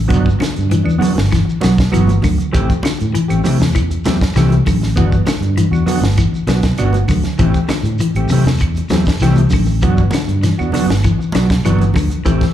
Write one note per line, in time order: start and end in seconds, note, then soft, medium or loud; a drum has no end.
0.00 0.12 A1 medium
0.08 0.34 G1 medium
0.08 0.27 F#3 medium
0.08 0.28 B3 medium
0.08 0.28 D4 medium
0.08 0.28 F#4 medium
0.08 muted clean electric guitar stroke medium
0.08 kick medium
0.08 closed hi-hat medium
0.13 shekere medium
0.26 kick medium
0.26 shekere soft
0.39 0.64 D3 medium
0.39 muted clean electric guitar stroke soft
0.39 snare medium
0.39 closed hi-hat medium
0.39 high conga medium
0.39 claves medium
0.45 shekere medium
0.53 muted clean electric guitar stroke soft
0.53 closed hi-hat soft
0.58 0.81 G2 loud
0.58 shekere soft
0.69 0.95 E3 medium
0.69 muted clean electric guitar stroke soft
0.69 closed hi-hat medium
0.69 high conga medium
0.69 shekere medium
0.83 0.99 E2 medium
0.83 0.97 B3 soft
0.83 0.98 D4 medium
0.83 muted clean electric guitar stroke medium
0.83 claves medium
0.89 shekere soft
0.98 1.25 D3 medium
0.98 1.15 F#3 medium
0.98 1.14 B3 medium
0.98 1.14 D4 medium
0.98 1.13 F#4 medium
0.98 open hi-hat medium
0.98 low conga medium
1.04 shekere medium
1.15 1.42 G1 medium
1.15 muted clean electric guitar stroke soft
1.15 snare medium
1.15 high conga medium
1.19 shekere soft
1.32 1.56 E3 medium
1.32 kick medium
1.32 snare soft
1.32 closed hi-hat medium
1.32 claves medium
1.32 shekere medium
1.45 muted clean electric guitar stroke soft
1.49 shekere soft
1.60 1.87 B1 medium
1.60 1.77 F#3 medium
1.60 1.87 F#3 medium
1.60 1.76 B3 medium
1.60 1.76 D4 medium
1.60 1.76 F#4 medium
1.60 snare medium
1.60 closed hi-hat soft
1.60 high conga medium
1.60 shekere medium
1.77 muted clean electric guitar stroke soft
1.77 kick medium
1.77 snare medium
1.77 closed hi-hat soft
1.77 shekere soft
1.92 2.18 G1 medium
1.92 2.17 E3 medium
1.92 2.10 F#3 medium
1.92 2.11 B3 medium
1.92 2.11 F#4 medium
1.92 closed hi-hat medium
1.92 claves medium
1.92 shekere medium
2.07 closed hi-hat soft
2.07 high conga medium
2.07 shekere soft
2.22 2.36 D2 medium
2.22 2.47 D3 medium
2.22 muted clean electric guitar stroke soft
2.22 kick medium
2.22 open hi-hat medium
2.22 high conga medium
2.22 low conga medium
2.22 claves medium
2.22 shekere medium
2.38 muted clean electric guitar stroke soft
2.38 closed hi-hat soft
2.38 shekere soft
2.52 2.66 A1 medium
2.52 2.71 E3 medium
2.52 2.71 A3 medium
2.52 2.71 C4 medium
2.52 2.72 G4 medium
2.52 muted clean electric guitar stroke medium
2.52 kick medium
2.52 closed hi-hat medium
2.52 shekere medium
2.70 kick medium
2.70 closed hi-hat soft
2.70 shekere soft
2.83 3.08 D3 medium
2.83 muted clean electric guitar stroke soft
2.83 muted fingered electric bass stroke soft
2.83 snare medium
2.83 closed hi-hat soft
2.83 high conga medium
2.83 claves medium
2.83 shekere medium
2.98 3.12 A2 medium
2.98 muted clean electric guitar stroke soft
2.98 closed hi-hat soft
2.98 shekere soft
3.13 3.38 E3 medium
3.13 muted clean electric guitar stroke soft
3.13 closed hi-hat medium
3.13 shekere medium
3.28 3.42 A1 medium
3.28 3.43 A3 soft
3.28 3.43 C4 soft
3.28 3.43 G4 medium
3.28 closed hi-hat soft
3.28 claves medium
3.28 shekere soft
3.44 3.69 C3 medium
3.44 3.59 E3 medium
3.44 3.59 A3 medium
3.44 3.60 C4 medium
3.44 3.59 G4 medium
3.44 muted fingered electric bass stroke soft
3.44 open hi-hat medium
3.44 low conga medium
3.44 shekere medium
3.60 3.97 E2 medium
3.60 muted clean electric guitar stroke soft
3.60 snare medium
3.60 high conga medium
3.60 shekere soft
3.75 3.98 E3 medium
3.75 kick medium
3.75 closed hi-hat medium
3.75 claves medium
3.75 shekere medium
3.90 muted clean electric guitar stroke soft
3.90 closed hi-hat soft
3.90 shekere soft
4.05 4.19 E2 medium
4.05 4.20 E3 medium
4.05 4.29 F#3 medium
4.05 4.20 A3 medium
4.05 4.20 C4 medium
4.05 4.19 G4 medium
4.05 snare medium
4.05 closed hi-hat soft
4.05 high conga medium
4.05 shekere medium
4.21 muted clean electric guitar stroke soft
4.21 kick medium
4.21 snare medium
4.21 shekere soft
4.36 4.60 C2 medium
4.36 4.54 E3 medium
4.36 4.59 E3 medium
4.36 4.54 A3 medium
4.36 4.54 C4 medium
4.36 4.54 G4 medium
4.36 snare soft
4.36 closed hi-hat medium
4.36 claves medium
4.36 shekere medium
4.50 closed hi-hat soft
4.50 high conga medium
4.50 shekere soft
4.66 4.99 A1 medium
4.66 4.90 D3 medium
4.66 muted clean electric guitar stroke soft
4.66 kick medium
4.66 open hi-hat medium
4.66 low conga medium
4.66 claves medium
4.66 shekere medium
4.81 muted clean electric guitar stroke soft
4.81 snare soft
4.81 shekere soft
4.96 5.21 G1 medium
4.96 5.21 E3 medium
4.96 5.14 B3 medium
4.96 5.15 D4 medium
4.96 5.15 F#4 medium
4.96 kick medium
4.96 closed hi-hat medium
4.96 shekere medium
5.12 kick medium
5.12 shekere soft
5.26 5.51 D3 medium
5.26 muted clean electric guitar stroke soft
5.26 snare medium
5.26 closed hi-hat medium
5.26 high conga medium
5.26 claves medium
5.26 shekere medium
5.41 5.65 G2 medium
5.41 muted clean electric guitar stroke soft
5.41 closed hi-hat soft
5.41 shekere soft
5.57 5.81 E3 medium
5.57 muted clean electric guitar stroke soft
5.57 closed hi-hat medium
5.57 shekere medium
5.71 5.84 E2 medium
5.71 5.85 D4 soft
5.71 5.86 F#4 medium
5.71 claves medium
5.71 shekere soft
5.86 6.11 D3 medium
5.86 6.02 B3 medium
5.86 6.02 D4 medium
5.86 6.01 F#4 medium
5.86 open hi-hat medium
5.86 low conga medium
5.86 shekere medium
6.01 6.26 G1 medium
6.01 muted clean electric guitar stroke soft
6.01 snare medium
6.01 high conga medium
6.01 shekere soft
6.18 6.42 E3 medium
6.18 kick medium
6.18 closed hi-hat medium
6.18 claves medium
6.18 shekere medium
6.33 muted clean electric guitar stroke soft
6.33 shekere soft
6.47 6.71 B1 medium
6.47 6.72 F#3 medium
6.47 6.64 B3 medium
6.47 6.63 D4 medium
6.47 6.62 F#4 medium
6.47 snare medium
6.47 closed hi-hat soft
6.47 high conga medium
6.47 shekere medium
6.63 muted clean electric guitar stroke soft
6.63 kick medium
6.63 snare medium
6.63 closed hi-hat soft
6.63 shekere soft
6.78 7.03 G1 medium
6.78 6.97 B3 medium
6.78 6.97 D4 medium
6.78 6.97 F#4 loud
6.78 closed hi-hat medium
6.78 claves medium
6.78 shekere medium
6.93 closed hi-hat soft
6.93 high conga medium
6.93 shekere soft
7.08 7.21 D2 medium
7.08 7.34 D3 medium
7.08 muted clean electric guitar stroke soft
7.08 kick medium
7.08 open hi-hat medium
7.08 low conga medium
7.08 claves medium
7.08 shekere medium
7.23 muted clean electric guitar stroke soft
7.23 snare soft
7.23 closed hi-hat soft
7.23 shekere soft
7.38 7.51 A1 medium
7.38 7.57 E3 medium
7.38 7.63 E3 medium
7.38 7.57 A3 medium
7.38 7.58 C4 medium
7.38 7.58 G4 medium
7.38 kick medium
7.38 closed hi-hat medium
7.38 shekere medium
7.54 kick medium
7.54 closed hi-hat soft
7.54 shekere soft
7.68 7.93 D3 medium
7.68 muted fingered electric bass stroke soft
7.68 muted clean electric guitar stroke soft
7.68 snare medium
7.68 closed hi-hat soft
7.68 high conga medium
7.68 claves medium
7.68 shekere medium
7.83 7.96 A2 medium
7.83 muted clean electric guitar stroke soft
7.83 closed hi-hat soft
7.83 shekere soft
7.99 8.24 E3 medium
7.99 muted clean electric guitar stroke soft
7.99 closed hi-hat medium
7.99 shekere medium
8.15 8.27 A1 medium
8.15 8.31 A3 soft
8.15 8.31 C4 soft
8.15 8.31 G4 medium
8.15 closed hi-hat soft
8.15 claves medium
8.15 shekere soft
8.29 8.54 C3 medium
8.29 8.47 E3 medium
8.29 8.47 A3 medium
8.29 8.46 C4 medium
8.29 open hi-hat medium
8.29 low conga medium
8.29 shekere medium
8.33 8.46 G4 medium
8.44 8.81 E2 medium
8.44 muted clean electric guitar stroke soft
8.44 snare medium
8.44 high conga medium
8.44 shekere soft
8.59 muted clean electric guitar stroke medium
8.59 kick medium
8.59 closed hi-hat medium
8.59 claves medium
8.59 shekere medium
8.75 muted clean electric guitar stroke soft
8.75 closed hi-hat soft
8.75 shekere soft
8.89 9.04 E2 medium
8.89 9.07 E3 medium
8.89 9.14 F#3 medium
8.89 9.07 A3 medium
8.89 9.07 C4 medium
8.89 snare medium
8.89 closed hi-hat soft
8.89 high conga medium
8.89 low conga medium
8.89 shekere medium
8.94 9.06 G4 medium
9.05 muted fingered electric bass stroke soft
9.05 muted clean electric guitar stroke soft
9.05 kick medium
9.05 snare medium
9.05 shekere soft
9.19 9.46 C2 medium
9.19 9.40 E3 medium
9.19 9.46 E3 medium
9.19 9.40 A3 medium
9.19 9.40 C4 medium
9.19 9.41 G4 loud
9.19 snare soft
9.19 closed hi-hat medium
9.19 claves medium
9.19 shekere medium
9.35 closed hi-hat soft
9.35 high conga medium
9.35 shekere soft
9.50 9.84 A1 medium
9.50 9.76 D3 medium
9.50 muted clean electric guitar stroke soft
9.50 kick medium
9.50 open hi-hat medium
9.50 low conga medium
9.50 claves medium
9.50 shekere medium
9.66 muted clean electric guitar stroke soft
9.66 shekere soft
9.82 10.07 G1 medium
9.82 10.06 E3 medium
9.82 10.01 F#3 medium
9.82 10.01 B3 medium
9.82 10.01 D4 medium
9.82 10.01 F#4 medium
9.82 kick medium
9.82 closed hi-hat medium
9.82 shekere medium
9.97 kick medium
9.97 shekere soft
10.11 10.37 D3 medium
10.11 muted clean electric guitar stroke soft
10.11 snare medium
10.11 closed hi-hat medium
10.11 high conga medium
10.11 claves medium
10.11 shekere medium
10.28 10.52 G2 medium
10.28 muted clean electric guitar stroke soft
10.28 closed hi-hat soft
10.28 shekere soft
10.42 10.67 E3 medium
10.42 muted clean electric guitar stroke soft
10.42 snare soft
10.42 closed hi-hat medium
10.42 shekere medium
10.58 10.72 E2 medium
10.58 10.72 B3 soft
10.58 10.72 D4 soft
10.58 10.72 F#4 medium
10.58 claves medium
10.58 shekere soft
10.72 10.98 D3 medium
10.72 10.89 F#3 medium
10.72 10.89 B3 medium
10.72 10.89 D4 medium
10.72 10.88 F#4 medium
10.72 open hi-hat medium
10.72 low conga medium
10.72 shekere medium
10.86 11.13 G1 medium
10.86 muted clean electric guitar stroke soft
10.86 snare medium
10.86 high conga medium
10.86 shekere soft
11.04 11.28 E3 medium
11.04 kick medium
11.04 closed hi-hat medium
11.04 claves medium
11.04 shekere medium
11.19 muted clean electric guitar stroke soft
11.19 shekere soft
11.32 11.59 B1 medium
11.32 11.50 F#3 medium
11.32 11.59 F#3 medium
11.32 11.50 B3 medium
11.32 11.50 D4 medium
11.32 11.50 F#4 medium
11.32 snare medium
11.32 closed hi-hat soft
11.32 high conga medium
11.32 shekere medium
11.50 muted clean electric guitar stroke soft
11.50 kick medium
11.50 snare medium
11.50 closed hi-hat soft
11.50 shekere soft
11.65 11.90 G1 medium
11.65 11.89 E3 medium
11.65 11.83 F#3 medium
11.65 11.84 B3 medium
11.65 11.84 D4 medium
11.65 11.84 F#4 medium
11.65 closed hi-hat medium
11.65 claves medium
11.65 shekere medium
11.79 closed hi-hat soft
11.79 high conga medium
11.79 shekere soft
11.94 12.08 D2 medium
11.94 12.20 D3 medium
11.94 muted clean electric guitar stroke soft
11.94 kick medium
11.94 open hi-hat medium
11.94 high conga medium
11.94 low conga medium
11.94 claves medium
11.94 shekere medium
12.10 muted clean electric guitar stroke soft
12.10 closed hi-hat soft
12.10 shekere soft
12.25 12.38 A1 medium
12.25 12.44 E3 medium
12.25 12.49 E3 medium
12.25 12.44 A3 medium
12.25 12.44 C4 medium
12.25 12.44 G4 medium
12.25 kick medium
12.25 closed hi-hat medium
12.25 shekere medium
12.41 kick medium
12.41 snare soft
12.41 closed hi-hat soft
12.41 shekere soft